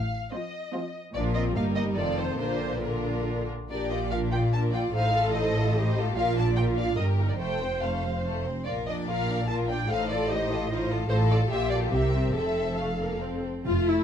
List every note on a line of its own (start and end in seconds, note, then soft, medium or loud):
0.00 0.26 A1 soft
0.00 0.26 A2 soft
0.00 0.34 F5 medium
0.33 0.64 F3 soft
0.33 0.65 C4 soft
0.33 0.64 F4 soft
0.33 0.64 C5 soft
0.33 0.94 D#5 soft
0.74 1.05 F3 soft
0.74 1.05 C4 soft
0.74 1.05 F4 soft
0.74 1.05 C5 soft
1.15 1.53 A#1 soft
1.15 1.53 A#2 soft
1.15 1.53 F3 soft
1.15 1.34 D4 soft
1.15 1.53 F4 soft
1.15 1.53 A#4 soft
1.15 1.23 D5 medium
1.35 1.55 C4 soft
1.35 1.44 D#5 medium
1.56 1.97 G1 soft
1.56 1.97 G2 soft
1.56 1.97 G3 soft
1.56 1.97 A#3 soft
1.56 1.98 D#4 soft
1.56 1.96 A#4 soft
1.56 1.64 F5 medium
1.76 1.84 D#5 medium
1.96 2.39 F1 soft
1.96 2.39 F2 soft
1.96 2.40 D#3 soft
1.96 2.39 C4 soft
1.96 2.37 F4 soft
1.96 2.40 A4 soft
1.96 2.17 D5 medium
2.18 2.39 C5 soft
2.38 3.48 A#1 soft
2.38 3.48 A#2 soft
2.38 2.82 D3 soft
2.38 2.83 D4 soft
2.38 2.81 F4 soft
2.38 2.82 A#4 soft
2.38 2.83 C5 medium
2.83 3.48 D3 soft
2.83 3.49 D4 soft
2.83 3.48 F4 soft
2.83 3.48 A#4 soft
2.83 3.49 A#4 soft
3.70 4.91 A#1 soft
3.70 4.91 A#2 soft
3.70 3.90 D4 soft
3.70 4.09 G4 soft
3.70 3.90 A#4 soft
3.70 3.90 D5 medium
3.90 4.12 F4 soft
3.90 4.12 D5 soft
3.90 3.98 D#5 medium
4.11 4.33 D4 soft
4.11 4.95 F4 soft
4.11 4.33 A#4 soft
4.11 4.19 F5 medium
4.32 4.54 F4 soft
4.32 4.54 D5 soft
4.32 4.40 G5 medium
4.53 4.73 D4 soft
4.53 4.73 A#4 soft
4.53 4.61 A5 medium
4.74 4.94 F4 soft
4.74 4.94 D5 soft
4.74 4.82 G5 medium
4.94 6.14 A1 soft
4.94 6.14 A2 medium
4.94 5.14 D#4 soft
4.94 5.75 A4 medium
4.94 5.14 C5 soft
4.94 5.34 F5 medium
5.15 5.35 F4 soft
5.15 5.35 A4 soft
5.35 5.56 D#4 soft
5.35 5.56 C5 soft
5.35 5.95 D#5 medium
5.57 5.77 F4 soft
5.57 5.77 A4 soft
5.76 5.96 D#4 soft
5.76 6.16 G4 medium
5.76 5.95 C5 soft
5.98 6.16 F4 soft
5.98 6.17 A4 soft
6.15 6.96 A#1 soft
6.15 6.96 A#2 medium
6.15 6.97 F4 medium
6.15 6.35 F4 soft
6.15 6.35 A#4 soft
6.15 6.34 F5 medium
6.36 6.56 D4 soft
6.36 6.56 D5 soft
6.36 6.45 A5 medium
6.56 6.77 F4 soft
6.56 6.77 A#4 soft
6.56 6.64 G5 medium
6.77 6.97 D4 soft
6.77 6.97 D5 soft
6.77 6.97 F5 medium
6.96 7.39 G1 soft
6.96 7.38 G2 soft
6.96 7.17 G4 soft
6.96 7.40 A#4 soft
6.96 7.17 A#4 soft
6.96 7.04 D#5 medium
7.19 7.40 D#4 soft
7.19 7.40 G4 soft
7.29 7.34 D5 soft
7.38 8.43 F1 soft
7.38 8.44 F2 soft
7.38 7.60 A3 soft
7.38 7.59 A4 soft
7.38 8.43 C5 soft
7.38 7.80 G5 medium
7.61 7.82 C4 soft
7.61 7.82 C5 soft
7.81 8.03 A3 soft
7.81 8.03 A4 soft
7.81 8.24 F5 soft
8.04 8.25 C4 soft
8.04 8.24 C5 soft
8.26 8.45 A3 soft
8.26 8.45 A4 soft
8.46 8.67 C4 soft
8.46 8.67 C5 soft
8.65 9.85 A#1 soft
8.65 9.85 A#2 soft
8.65 8.85 F4 soft
8.65 8.86 A#4 soft
8.65 8.73 D5 medium
8.87 9.09 D4 soft
8.87 9.09 D5 soft
8.87 8.95 D#5 medium
9.07 9.28 F4 soft
9.07 9.46 A#4 soft
9.07 9.29 A#4 soft
9.07 9.47 F5 medium
9.29 9.49 D4 soft
9.29 9.49 D5 soft
9.47 9.88 F4 soft
9.47 9.68 F4 soft
9.47 9.68 A#4 soft
9.47 9.55 A5 medium
9.68 9.89 D4 soft
9.68 9.90 D5 soft
9.68 9.88 G5 medium
9.89 11.07 A1 soft
9.89 11.07 A2 medium
9.89 10.08 D#4 soft
9.89 10.29 A4 medium
9.89 10.08 C5 soft
9.89 10.10 F5 medium
10.10 10.30 F4 soft
10.10 10.30 A4 soft
10.10 10.29 D5 medium
10.30 10.50 D#4 soft
10.30 10.70 G4 medium
10.30 10.50 C5 soft
10.30 10.90 D#5 medium
10.51 10.70 F4 soft
10.51 10.70 A4 soft
10.70 10.88 D#4 soft
10.70 11.09 F4 medium
10.70 10.88 C5 soft
10.89 11.08 F4 soft
10.89 11.07 A4 soft
11.09 11.47 A1 medium
11.09 11.47 A2 medium
11.09 11.47 F4 medium
11.09 11.47 A4 medium
11.09 11.49 A4 medium
11.09 11.18 C5 medium
11.31 11.39 D5 medium
11.49 11.91 A#1 medium
11.49 11.90 A#2 medium
11.49 11.91 F4 medium
11.49 11.71 G4 medium
11.49 12.33 G4 medium
11.49 11.70 E5 medium
11.70 11.92 A4 soft
11.70 11.78 D5 medium
11.91 12.34 C2 medium
11.91 12.34 C3 soft
11.91 12.35 C4 soft
11.91 12.34 A#4 soft
11.91 12.33 E5 medium
12.34 13.44 F1 soft
12.34 13.44 F2 soft
12.34 12.78 C4 soft
12.34 13.44 A4 soft
12.34 12.79 A4 soft
12.34 12.77 E5 medium
12.78 12.86 A3 soft
12.78 13.22 F5 soft
13.00 13.22 A#3 soft
13.23 13.65 C4 soft
13.65 13.98 F1 medium
13.65 14.04 A3 medium
13.65 13.85 F4 medium
13.86 14.04 E4 medium